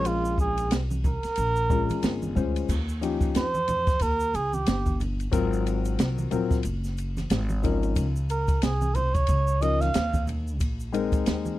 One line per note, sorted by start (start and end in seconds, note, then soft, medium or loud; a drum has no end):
0.00 0.71 A#1 medium
0.00 0.78 G#3 medium
0.00 0.79 C#4 medium
0.00 0.79 F4 medium
0.00 0.79 A#4 medium
0.05 0.39 F4 loud
0.05 ride medium
0.05 shaker medium
0.25 shaker soft
0.38 0.76 G#4 medium
0.38 kick medium
0.38 shaker soft
0.58 ride medium
0.58 shaker soft
0.71 1.21 C2 medium
0.71 snare loud
0.71 hi-hat pedal medium
0.71 ride medium
0.71 shaker medium
0.91 high conga medium
0.91 shaker soft
1.04 2.33 A#4 loud
1.04 kick medium
1.04 high conga soft
1.04 low conga medium
1.04 shaker soft
1.23 muted upright bass stroke soft
1.23 snare soft
1.23 ride medium
1.23 shaker soft
1.35 1.87 A#1 medium
1.35 ride medium
1.35 shaker medium
1.56 shaker soft
1.69 2.34 G#3 medium
1.69 2.34 C#4 medium
1.69 2.35 F4 medium
1.69 2.64 A#4 medium
1.69 kick medium
1.69 shaker soft
1.90 muted upright bass stroke soft
1.90 ride medium
1.90 high conga medium
1.90 shaker soft
2.03 2.35 G1 medium
2.03 snare loud
2.03 hi-hat pedal medium
2.03 ride medium
2.03 shaker medium
2.22 high conga medium
2.22 shaker soft
2.35 2.68 D2 medium
2.35 2.69 G#3 medium
2.35 2.69 C#4 medium
2.35 2.69 F4 medium
2.35 2.69 C5 medium
2.35 kick medium
2.35 high conga soft
2.35 low conga medium
2.35 shaker soft
2.56 ride medium
2.56 shaker soft
2.69 3.32 D#2 medium
2.69 kick medium
2.69 crash medium
2.69 shaker medium
2.89 shaker soft
3.01 3.42 F3 medium
3.01 3.43 C#4 medium
3.01 3.43 D#4 medium
3.01 3.43 G4 medium
3.01 ride medium
3.01 shaker soft
3.21 kick medium
3.21 shaker soft
3.35 3.98 F2 medium
3.35 4.04 C5 loud
3.35 snare loud
3.35 hi-hat pedal medium
3.35 ride medium
3.35 shaker medium
3.54 high conga medium
3.54 shaker soft
3.68 ride medium
3.68 high conga soft
3.68 low conga medium
3.68 shaker soft
3.87 kick loud
3.87 snare soft
3.87 ride soft
3.87 shaker soft
3.99 4.32 D#2 medium
3.99 4.37 A#4 loud
3.99 kick loud
3.99 ride medium
3.99 shaker medium
4.20 shaker medium
4.34 4.65 C#2 medium
4.34 4.56 G#4 medium
4.34 ride medium
4.34 shaker soft
4.53 5.00 G4 medium
4.53 high conga medium
4.53 shaker soft
4.66 5.30 G1 medium
4.66 snare loud
4.66 hi-hat pedal medium
4.66 ride medium
4.66 shaker medium
4.86 kick medium
4.86 high conga medium
4.86 shaker soft
5.00 ride medium
5.00 low conga medium
5.00 shaker soft
5.20 ride soft
5.20 shaker soft
5.32 5.95 G#1 loud
5.32 6.26 F#3 medium
5.32 6.26 C4 medium
5.32 6.26 F4 medium
5.32 6.26 A#4 loud
5.32 kick medium
5.32 ride medium
5.32 shaker medium
5.53 shaker soft
5.67 ride medium
5.67 shaker soft
5.85 ride soft
5.85 shaker soft
5.99 6.30 C2 medium
5.99 snare loud
5.99 hi-hat pedal medium
5.99 ride medium
5.99 shaker medium
6.18 high conga medium
6.18 shaker soft
6.31 6.63 A#1 medium
6.31 6.56 F#3 medium
6.31 6.56 C4 medium
6.31 6.56 F4 medium
6.31 6.57 A#4 medium
6.31 ride medium
6.31 high conga soft
6.31 low conga medium
6.31 shaker soft
6.51 kick loud
6.51 snare soft
6.51 shaker soft
6.63 7.27 F#1 medium
6.63 ride medium
6.63 shaker medium
6.84 snare soft
6.84 shaker soft
6.98 ride medium
6.98 shaker soft
7.17 snare soft
7.17 ride soft
7.17 high conga medium
7.17 shaker soft
7.30 7.93 G#1 loud
7.30 snare loud
7.30 hi-hat pedal medium
7.30 ride medium
7.30 shaker medium
7.49 high conga medium
7.49 shaker soft
7.63 8.04 F3 medium
7.63 8.04 C#4 medium
7.63 8.04 D#4 medium
7.63 8.05 A#4 medium
7.63 kick medium
7.63 ride medium
7.63 low conga medium
7.63 shaker soft
7.83 ride soft
7.83 shaker soft
7.96 8.59 C#2 medium
7.96 kick loud
7.96 ride medium
7.96 shaker medium
8.16 shaker soft
8.30 8.65 A#4 medium
8.30 ride medium
8.30 shaker soft
8.48 kick medium
8.48 ride soft
8.48 shaker soft
8.62 9.25 C2 medium
8.62 8.97 G#4 medium
8.62 snare loud
8.62 hi-hat pedal medium
8.62 ride medium
8.62 shaker medium
8.81 high conga medium
8.81 shaker soft
8.95 9.16 C5 medium
8.95 ride medium
8.95 high conga soft
8.95 low conga medium
8.95 shaker soft
9.14 9.63 C#5 medium
9.14 kick loud
9.14 ride soft
9.14 shaker soft
9.27 9.91 C#2 medium
9.27 kick medium
9.27 ride medium
9.27 shaker medium
9.47 shaker medium
9.61 9.86 F3 medium
9.61 9.86 C#4 medium
9.61 9.86 D#4 medium
9.61 9.87 A#4 medium
9.61 9.83 D#5 medium
9.61 ride medium
9.61 shaker soft
9.81 10.28 F5 loud
9.81 snare soft
9.81 ride soft
9.81 high conga medium
9.81 shaker soft
9.94 10.61 D#2 medium
9.94 snare loud
9.94 hi-hat pedal medium
9.94 ride medium
9.94 shaker medium
10.14 kick medium
10.14 high conga medium
10.14 shaker soft
10.27 ride medium
10.27 low conga medium
10.27 shaker soft
10.47 shaker soft
10.60 11.23 A#1 medium
10.60 kick medium
10.60 ride medium
10.60 shaker medium
10.80 shaker soft
10.93 11.57 G#3 medium
10.93 11.57 C4 medium
10.93 11.58 D#4 medium
10.93 11.58 A#4 medium
10.93 ride medium
10.93 shaker soft
11.12 kick medium
11.12 ride soft
11.12 shaker soft
11.26 11.59 D#2 medium
11.26 snare loud
11.26 hi-hat pedal medium
11.26 ride medium
11.26 shaker medium
11.45 high conga medium
11.45 shaker soft